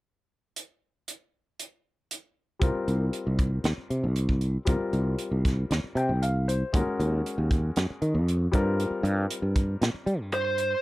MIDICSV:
0, 0, Header, 1, 6, 480
1, 0, Start_track
1, 0, Key_signature, -3, "minor"
1, 0, Tempo, 514580
1, 518, Time_signature, 4, 2, 24, 8
1, 10090, End_track
2, 0, Start_track
2, 0, Title_t, "Lead electric guitar"
2, 0, Program_c, 0, 29
2, 9642, Note_on_c, 0, 72, 81
2, 10087, Note_off_c, 0, 72, 0
2, 10090, End_track
3, 0, Start_track
3, 0, Title_t, "Grand piano"
3, 0, Program_c, 1, 0
3, 2421, Note_on_c, 1, 55, 53
3, 2437, Note_on_c, 1, 60, 55
3, 2443, Note_on_c, 1, 65, 52
3, 2456, Note_on_c, 1, 70, 60
3, 4312, Note_off_c, 1, 55, 0
3, 4321, Note_off_c, 1, 60, 0
3, 4323, Note_off_c, 1, 65, 0
3, 4330, Note_off_c, 1, 70, 0
3, 4340, Note_on_c, 1, 55, 59
3, 4348, Note_on_c, 1, 60, 51
3, 4359, Note_on_c, 1, 65, 55
3, 4374, Note_on_c, 1, 70, 64
3, 5569, Note_on_c, 1, 79, 58
3, 5787, Note_off_c, 1, 79, 0
3, 5804, Note_on_c, 1, 77, 62
3, 6025, Note_off_c, 1, 77, 0
3, 6046, Note_on_c, 1, 72, 60
3, 6232, Note_off_c, 1, 55, 0
3, 6236, Note_off_c, 1, 60, 0
3, 6242, Note_off_c, 1, 65, 0
3, 6249, Note_off_c, 1, 70, 0
3, 6266, Note_off_c, 1, 72, 0
3, 6277, Note_on_c, 1, 56, 56
3, 6288, Note_on_c, 1, 61, 54
3, 6296, Note_on_c, 1, 66, 57
3, 6308, Note_on_c, 1, 70, 68
3, 7924, Note_off_c, 1, 56, 0
3, 7930, Note_off_c, 1, 61, 0
3, 7934, Note_off_c, 1, 66, 0
3, 7941, Note_off_c, 1, 70, 0
3, 7943, Note_on_c, 1, 55, 69
3, 7955, Note_on_c, 1, 60, 60
3, 7967, Note_on_c, 1, 65, 58
3, 7973, Note_on_c, 1, 70, 73
3, 9833, Note_off_c, 1, 55, 0
3, 9839, Note_off_c, 1, 60, 0
3, 9845, Note_off_c, 1, 65, 0
3, 9848, Note_off_c, 1, 70, 0
3, 10090, End_track
4, 0, Start_track
4, 0, Title_t, "Fretless electric bass"
4, 0, Program_c, 2, 35
4, 2444, Note_on_c, 2, 36, 73
4, 2542, Note_off_c, 2, 36, 0
4, 2684, Note_on_c, 2, 36, 72
4, 2880, Note_off_c, 2, 36, 0
4, 3047, Note_on_c, 2, 36, 60
4, 3340, Note_off_c, 2, 36, 0
4, 3396, Note_on_c, 2, 39, 65
4, 3497, Note_off_c, 2, 39, 0
4, 3641, Note_on_c, 2, 48, 64
4, 3765, Note_on_c, 2, 36, 63
4, 3779, Note_off_c, 2, 48, 0
4, 4256, Note_off_c, 2, 36, 0
4, 4358, Note_on_c, 2, 36, 73
4, 4458, Note_off_c, 2, 36, 0
4, 4599, Note_on_c, 2, 36, 73
4, 4797, Note_off_c, 2, 36, 0
4, 4957, Note_on_c, 2, 36, 61
4, 5254, Note_off_c, 2, 36, 0
4, 5322, Note_on_c, 2, 39, 70
4, 5421, Note_off_c, 2, 39, 0
4, 5553, Note_on_c, 2, 48, 69
4, 5681, Note_on_c, 2, 36, 61
4, 5695, Note_off_c, 2, 48, 0
4, 6175, Note_off_c, 2, 36, 0
4, 6288, Note_on_c, 2, 39, 72
4, 6385, Note_off_c, 2, 39, 0
4, 6525, Note_on_c, 2, 39, 79
4, 6721, Note_off_c, 2, 39, 0
4, 6883, Note_on_c, 2, 39, 64
4, 7178, Note_off_c, 2, 39, 0
4, 7245, Note_on_c, 2, 42, 62
4, 7343, Note_off_c, 2, 42, 0
4, 7479, Note_on_c, 2, 51, 66
4, 7597, Note_on_c, 2, 41, 67
4, 7611, Note_off_c, 2, 51, 0
4, 7894, Note_off_c, 2, 41, 0
4, 7964, Note_on_c, 2, 43, 80
4, 8260, Note_off_c, 2, 43, 0
4, 8426, Note_on_c, 2, 43, 83
4, 8629, Note_off_c, 2, 43, 0
4, 8789, Note_on_c, 2, 43, 63
4, 9089, Note_off_c, 2, 43, 0
4, 9154, Note_on_c, 2, 46, 65
4, 9256, Note_off_c, 2, 46, 0
4, 9388, Note_on_c, 2, 55, 73
4, 9524, Note_off_c, 2, 55, 0
4, 9524, Note_on_c, 2, 43, 69
4, 10016, Note_off_c, 2, 43, 0
4, 10090, End_track
5, 0, Start_track
5, 0, Title_t, "Muted fretless electric bass strokes"
5, 3522, Note_on_c, 9, 29, 27
5, 3616, Note_off_c, 9, 29, 0
5, 4480, Note_on_c, 9, 29, 28
5, 4574, Note_off_c, 9, 29, 0
5, 5448, Note_on_c, 9, 29, 27
5, 5541, Note_off_c, 9, 29, 0
5, 6406, Note_on_c, 9, 29, 28
5, 6500, Note_off_c, 9, 29, 0
5, 7372, Note_on_c, 9, 29, 28
5, 7466, Note_off_c, 9, 29, 0
5, 8308, Note_on_c, 9, 29, 31
5, 8401, Note_off_c, 9, 29, 0
5, 9275, Note_on_c, 9, 29, 30
5, 9368, Note_off_c, 9, 29, 0
5, 10090, End_track
6, 0, Start_track
6, 0, Title_t, "Drums"
6, 526, Note_on_c, 9, 42, 44
6, 619, Note_off_c, 9, 42, 0
6, 1007, Note_on_c, 9, 42, 45
6, 1100, Note_off_c, 9, 42, 0
6, 1488, Note_on_c, 9, 42, 43
6, 1581, Note_off_c, 9, 42, 0
6, 1969, Note_on_c, 9, 42, 46
6, 2062, Note_off_c, 9, 42, 0
6, 2440, Note_on_c, 9, 36, 86
6, 2441, Note_on_c, 9, 42, 59
6, 2534, Note_off_c, 9, 36, 0
6, 2535, Note_off_c, 9, 42, 0
6, 2686, Note_on_c, 9, 42, 50
6, 2779, Note_off_c, 9, 42, 0
6, 2921, Note_on_c, 9, 42, 68
6, 3015, Note_off_c, 9, 42, 0
6, 3160, Note_on_c, 9, 36, 62
6, 3164, Note_on_c, 9, 42, 46
6, 3254, Note_off_c, 9, 36, 0
6, 3257, Note_off_c, 9, 42, 0
6, 3396, Note_on_c, 9, 42, 70
6, 3407, Note_on_c, 9, 38, 85
6, 3489, Note_off_c, 9, 42, 0
6, 3501, Note_off_c, 9, 38, 0
6, 3643, Note_on_c, 9, 42, 55
6, 3736, Note_off_c, 9, 42, 0
6, 3879, Note_on_c, 9, 42, 72
6, 3972, Note_off_c, 9, 42, 0
6, 4000, Note_on_c, 9, 36, 51
6, 4093, Note_off_c, 9, 36, 0
6, 4114, Note_on_c, 9, 42, 50
6, 4208, Note_off_c, 9, 42, 0
6, 4352, Note_on_c, 9, 42, 69
6, 4359, Note_on_c, 9, 36, 82
6, 4446, Note_off_c, 9, 42, 0
6, 4452, Note_off_c, 9, 36, 0
6, 4599, Note_on_c, 9, 42, 44
6, 4692, Note_off_c, 9, 42, 0
6, 4837, Note_on_c, 9, 42, 64
6, 4931, Note_off_c, 9, 42, 0
6, 5084, Note_on_c, 9, 36, 65
6, 5089, Note_on_c, 9, 42, 46
6, 5100, Note_on_c, 9, 38, 23
6, 5177, Note_off_c, 9, 36, 0
6, 5182, Note_off_c, 9, 42, 0
6, 5193, Note_off_c, 9, 38, 0
6, 5325, Note_on_c, 9, 42, 65
6, 5336, Note_on_c, 9, 38, 83
6, 5418, Note_off_c, 9, 42, 0
6, 5430, Note_off_c, 9, 38, 0
6, 5567, Note_on_c, 9, 42, 52
6, 5660, Note_off_c, 9, 42, 0
6, 5808, Note_on_c, 9, 42, 64
6, 5901, Note_off_c, 9, 42, 0
6, 6053, Note_on_c, 9, 42, 51
6, 6147, Note_off_c, 9, 42, 0
6, 6285, Note_on_c, 9, 36, 86
6, 6289, Note_on_c, 9, 42, 69
6, 6378, Note_off_c, 9, 36, 0
6, 6382, Note_off_c, 9, 42, 0
6, 6532, Note_on_c, 9, 42, 48
6, 6625, Note_off_c, 9, 42, 0
6, 6774, Note_on_c, 9, 42, 65
6, 6867, Note_off_c, 9, 42, 0
6, 7003, Note_on_c, 9, 36, 69
6, 7010, Note_on_c, 9, 42, 49
6, 7096, Note_off_c, 9, 36, 0
6, 7103, Note_off_c, 9, 42, 0
6, 7239, Note_on_c, 9, 42, 67
6, 7250, Note_on_c, 9, 38, 86
6, 7332, Note_off_c, 9, 42, 0
6, 7344, Note_off_c, 9, 38, 0
6, 7481, Note_on_c, 9, 42, 54
6, 7574, Note_off_c, 9, 42, 0
6, 7728, Note_on_c, 9, 42, 70
6, 7821, Note_off_c, 9, 42, 0
6, 7961, Note_on_c, 9, 36, 84
6, 7962, Note_on_c, 9, 42, 54
6, 8054, Note_off_c, 9, 36, 0
6, 8056, Note_off_c, 9, 42, 0
6, 8206, Note_on_c, 9, 42, 70
6, 8299, Note_off_c, 9, 42, 0
6, 8441, Note_on_c, 9, 42, 50
6, 8534, Note_off_c, 9, 42, 0
6, 8680, Note_on_c, 9, 42, 73
6, 8773, Note_off_c, 9, 42, 0
6, 8915, Note_on_c, 9, 36, 69
6, 8915, Note_on_c, 9, 42, 47
6, 9008, Note_off_c, 9, 36, 0
6, 9008, Note_off_c, 9, 42, 0
6, 9158, Note_on_c, 9, 42, 64
6, 9169, Note_on_c, 9, 38, 90
6, 9251, Note_off_c, 9, 42, 0
6, 9263, Note_off_c, 9, 38, 0
6, 9396, Note_on_c, 9, 42, 50
6, 9489, Note_off_c, 9, 42, 0
6, 9629, Note_on_c, 9, 42, 60
6, 9722, Note_off_c, 9, 42, 0
6, 9869, Note_on_c, 9, 42, 57
6, 9962, Note_off_c, 9, 42, 0
6, 10090, End_track
0, 0, End_of_file